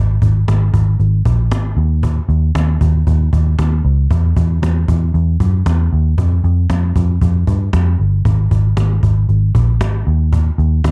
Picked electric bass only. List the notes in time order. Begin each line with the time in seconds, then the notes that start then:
Already playing: G#1
0.22 G#1
0.48 G#1
0.74 G#1
1.00 G#1
1.26 A#1
1.51 G#1
1.77 D#2
2.29 D#2
2.55 D#2
2.81 D#2
3.07 D#2
3.33 D#2
3.59 D#2
3.85 C#2
4.11 E2
4.37 E2
4.62 E2
4.88 E2
5.14 E2
5.40 F#2
5.66 E2
5.93 D#2
6.18 F2
6.44 F2
6.70 F2
6.96 F2
7.22 F2
7.47 G2
7.74 F2
8.00 G1
8.25 G#1
8.52 G#1
8.77 G#1
9.03 G#1
9.29 G#1
9.55 A#1
9.81 G#1
10.07 D#2
10.58 D#2
10.84 D#2